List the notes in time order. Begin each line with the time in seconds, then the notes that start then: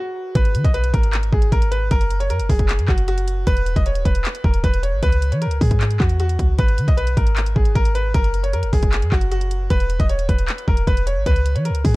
Already playing: F#4
0.35 G#1 B4, kick, closed hi-hat
0.45 closed hi-hat
0.55 D#3, closed hi-hat
0.64 B1 D#5, kick, closed hi-hat
0.74 B4, closed hi-hat
0.84 closed hi-hat
0.94 G#1 A#4, kick, closed hi-hat
1.03 closed hi-hat
1.13 clap, closed hi-hat
1.23 closed hi-hat
1.33 G#1 G#4, kick
1.42 closed hi-hat
1.52 G#1 A#4, kick, closed hi-hat
1.62 closed hi-hat
1.71 B4, closed hi-hat
1.91 F#1 A#4, kick, closed hi-hat
2.01 closed hi-hat
2.10 closed hi-hat
2.20 C#5, closed hi-hat
2.30 F#2 A#4, closed hi-hat
2.40 F#1, closed hi-hat
2.49 F#1 G#4, kick, open hi-hat
2.59 kick, closed hi-hat
2.69 clap, closed hi-hat
2.79 F#2, closed hi-hat
2.88 F#1 F#4, kick, clap
2.98 closed hi-hat
3.08 F#4, closed hi-hat
3.18 closed hi-hat
3.28 closed hi-hat
3.47 E1 B4, kick, closed hi-hat
3.57 closed hi-hat
3.66 closed hi-hat
3.76 E1 D#5, kick, closed hi-hat
3.86 C#5, closed hi-hat
3.95 D#1, closed hi-hat
4.05 E1 B4, kick, closed hi-hat
4.15 closed hi-hat
4.25 clap, closed hi-hat
4.35 closed hi-hat
4.44 E1 A#4, kick
4.54 closed hi-hat
4.64 E1 B4, kick, closed hi-hat
4.74 closed hi-hat
4.83 C#5, closed hi-hat
4.93 G#1
5.03 C#2 B4, kick, closed hi-hat
5.12 closed hi-hat
5.22 closed hi-hat
5.32 E3 C#5, closed hi-hat
5.42 A#4, closed hi-hat
5.47 C#2
5.51 closed hi-hat
5.61 G#2 G#4, kick, open hi-hat
5.71 kick, closed hi-hat
5.81 clap, closed hi-hat
5.91 closed hi-hat
6.00 E2 F#4, kick, clap
6.09 closed hi-hat
6.20 F#4, closed hi-hat
6.29 closed hi-hat
6.39 C#2, kick, closed hi-hat
6.59 G#1 B4, kick, closed hi-hat
6.68 closed hi-hat
6.78 D#3, closed hi-hat
6.88 B1 D#5, kick, closed hi-hat
6.97 B4, closed hi-hat
7.07 closed hi-hat
7.17 G#1 A#4, kick, closed hi-hat
7.27 closed hi-hat
7.36 clap, closed hi-hat
7.46 closed hi-hat
7.56 G#1 G#4, kick
7.65 closed hi-hat
7.75 G#1 A#4, kick, closed hi-hat
7.85 closed hi-hat
7.95 B4, closed hi-hat
8.14 F#1 A#4, kick, closed hi-hat
8.24 closed hi-hat
8.34 closed hi-hat
8.43 C#5, closed hi-hat
8.53 F#2 A#4, closed hi-hat
8.63 F#1, closed hi-hat
8.73 F#1 G#4, kick, open hi-hat
8.83 kick, closed hi-hat
8.92 clap, closed hi-hat
9.02 F#2, closed hi-hat
9.12 F#1 F#4, kick, clap
9.21 closed hi-hat
9.31 F#4, closed hi-hat
9.41 closed hi-hat
9.51 closed hi-hat
9.70 E1 B4, kick, closed hi-hat
9.80 closed hi-hat
9.90 closed hi-hat
10.00 E1 D#5, kick, closed hi-hat
10.09 C#5, closed hi-hat
10.19 D#1, closed hi-hat
10.29 E1 B4, kick, closed hi-hat
10.39 closed hi-hat
10.48 clap, closed hi-hat
10.58 closed hi-hat
10.68 E1 A#4, kick
10.77 closed hi-hat
10.87 E1 B4, kick, closed hi-hat
10.97 closed hi-hat
11.07 C#5, closed hi-hat
11.16 G#1
11.26 C#2 B4, kick, closed hi-hat
11.36 closed hi-hat
11.46 closed hi-hat
11.55 E3 C#5, closed hi-hat
11.65 A#4, closed hi-hat
11.70 C#2
11.75 closed hi-hat
11.85 G#2 G#4, kick, open hi-hat